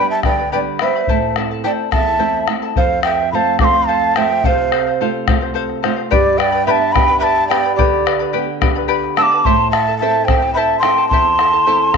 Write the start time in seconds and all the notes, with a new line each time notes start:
Already playing: G3 B3 D4 G4 B4 D5 G5 B5
0.09 E5 A5
0.23 D3 B4 D5 G5 B5, bombo rim, bombo low
0.38 B4 D5 B5, bombo rim
0.52 G3 B3 D4 G4 B4 D5 G5 B5
0.79 G3 B3 D4 B4 C5 D5 E5 G5 B5, bombo rim
0.94 B4 D5 B5, bombo rim
1.07 A2 E4 A4 C5 E5 A5, bombo low
1.22 bombo rim
1.36 A3 C4 E4 A4 E5 A5, bombo rim
1.50 E4 A4 A5, bombo rim
1.64 A3 C4 E4 A4 C5 D5 E5 G5 A5, bombo rim
1.91 E2 E4 A4 E5 A5, bombo rim, bombo low
2.06 E4 A4 A5, bombo rim
2.19 A3 C4 E4 A4 C5 E5 A5
2.34 bombo rim
2.48 A3 C4 E4 A4 E5 A5, bombo rim
2.62 E4 A4 A5
2.76 F2 A4 C5 F5, bombo rim, bombo low
3.03 A4 C5 E5 G5, bombo rim
3.07 F5
3.20 C5 F5
3.32 A3 C4 F4 A4 C5 F5 A5 B5, bombo rim
3.59 A3 C4 F4 A4 C5 F5 D6, bombo rim, bombo low
3.64 C6
3.74 C5 F5, bombo rim
3.86 A4 C5 F5 A5
4.02 bombo rim
4.16 A3 C4 F4 A4 C5 E5 F5 G5, bombo rim
4.30 C5 F5
4.44 C3 A4 C5 F5, bombo rim, bombo low
4.72 A4 C5 F5, bombo rim
4.87 C5 F5
5.01 A3 C4 F4 A4 C5 F5, bombo rim
5.28 A3 C4 F4 A4 C5 F5, bombo rim, bombo low
5.41 C5 F5, bombo rim
5.54 A4 C5 F5
5.70 bombo rim
5.83 A3 C4 F4 A4 C5 F5, bombo rim
5.96 C5 F5
6.11 G2 G4 B4 D5 G5 B5, bombo rim, bombo low
6.38 B4 D5 G5 B5, bombo rim
6.52 B4 D5 B5
6.65 B3 D4 G4 B4 D5 E5 G5 B5, bombo rim
6.71 A5
6.92 B3 B4 D5 G5 B5, bombo rim, bombo low
6.97 D4 G4
7.08 B4 D5 B5, bombo rim
7.18 G4 B4 D5 E5 G5 B5
7.23 A5
7.38 bombo rim
7.47 B3 D4 B4 D5 G5
7.51 G4 D5 B5, bombo rim
7.63 B4 D5 B5
7.75 G4 B4 D5 G5, bombo rim, bombo low
7.79 D3 B5
7.93 bombo rim
8.06 B4 D5 G5 B5, bombo rim
8.19 B4 D5 B5
8.33 B3 D4 G4 B4 D5 G5 B5
8.61 B3 D4 G4 B4 D5 G5 B5, bombo rim, bombo low
8.75 B4 D5 B5, bombo rim
8.88 G4 B4 D5 G5 B5, bombo rim
9.04 bombo rim
9.16 B3 D4 G4 B4 D5 G5 A5 B5 E6, bombo rim
9.23 D6
9.31 B4 D5 B5, bombo rim
9.43 A2 E4 A4 C5 E5 A5 C6, bombo rim, bombo low
9.71 E4 A4 E5 A5, bombo rim
9.75 A5
9.88 E4 A4 A5
9.98 C4 C5 E5 A5, bombo rim
10.02 E4 A4 A5
10.25 C4 C5 E5 G5, bombo rim, bombo low
10.29 E4 A4 A5
10.42 E4 A4 A5, bombo rim
10.53 E4 A4 C5 E5 A5 B5
10.58 A5
10.70 bombo rim
10.79 C4 G5 C6, bombo rim
10.84 E4 A4 E5 A5
10.98 E4 A4 A5
11.09 E2 A5 C6, bombo rim, bombo low
11.13 E4 A4 C5 E5 A5
11.39 E4 A4 E5 A5, bombo rim
11.53 E4 A4 A5
11.66 C4 E4 A4 C5 E5 A5, bombo rim
11.93 C4 E4 A4, bombo rim, bombo low